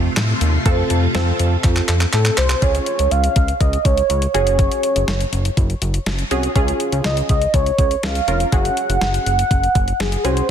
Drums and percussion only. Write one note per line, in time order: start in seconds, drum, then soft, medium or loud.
0.17 snare loud
0.17 clap loud
0.17 closed hi-hat medium
0.41 closed hi-hat medium
0.66 kick loud
0.66 closed hi-hat medium
0.90 closed hi-hat medium
1.15 snare loud
1.15 closed hi-hat medium
1.39 closed hi-hat medium
1.64 kick medium
1.64 clap medium
1.64 closed hi-hat medium
1.76 clap medium
1.89 clap medium
1.89 closed hi-hat medium
2.01 clap medium
2.13 clap medium
2.13 closed hi-hat medium
2.25 clap medium
2.38 clap loud
2.38 closed hi-hat medium
2.50 clap medium
2.62 kick loud
2.62 closed hi-hat medium
2.75 closed hi-hat medium
2.86 closed hi-hat medium
2.99 closed hi-hat medium
3.11 closed hi-hat medium
3.24 closed hi-hat medium
3.36 kick medium
3.36 closed hi-hat medium
3.48 closed hi-hat medium
3.61 kick medium
3.61 closed hi-hat medium
3.73 closed hi-hat soft
3.85 kick medium
3.85 closed hi-hat medium
3.97 closed hi-hat soft
4.10 closed hi-hat medium
4.22 closed hi-hat medium
4.35 closed hi-hat medium
4.47 closed hi-hat medium
4.59 kick loud
4.59 closed hi-hat medium
4.72 closed hi-hat medium
4.83 closed hi-hat medium
4.96 closed hi-hat medium
5.08 snare medium
5.08 closed hi-hat medium
5.21 closed hi-hat medium
5.33 closed hi-hat medium
5.45 closed hi-hat medium
5.57 kick medium
5.57 closed hi-hat medium
5.70 closed hi-hat soft
5.82 closed hi-hat medium
5.94 closed hi-hat soft
6.06 snare loud
6.06 closed hi-hat medium
6.19 closed hi-hat medium
6.31 closed hi-hat medium
6.43 closed hi-hat medium
6.56 kick loud
6.56 closed hi-hat medium
6.68 closed hi-hat medium
6.80 closed hi-hat medium
6.92 closed hi-hat medium
7.04 snare medium
7.04 closed hi-hat medium
7.17 closed hi-hat medium
7.29 kick medium
7.29 closed hi-hat medium
7.42 closed hi-hat medium
7.54 kick medium
7.54 closed hi-hat medium
7.66 closed hi-hat soft
7.78 kick medium
7.78 closed hi-hat medium
7.91 closed hi-hat soft
8.03 snare loud
8.03 closed hi-hat medium
8.15 closed hi-hat medium
8.28 closed hi-hat medium
8.40 closed hi-hat medium
8.52 kick loud
8.52 closed hi-hat medium
8.65 closed hi-hat medium
8.77 closed hi-hat medium
8.90 closed hi-hat medium
9.01 snare medium
9.01 closed hi-hat medium
9.14 closed hi-hat medium
9.26 closed hi-hat medium
9.39 closed hi-hat medium
9.51 kick medium
9.51 closed hi-hat medium
9.64 closed hi-hat soft
9.75 kick medium
9.75 closed hi-hat medium
9.88 closed hi-hat soft
10.00 snare loud
10.00 closed hi-hat medium
10.12 closed hi-hat medium
10.25 closed hi-hat medium
10.37 closed hi-hat medium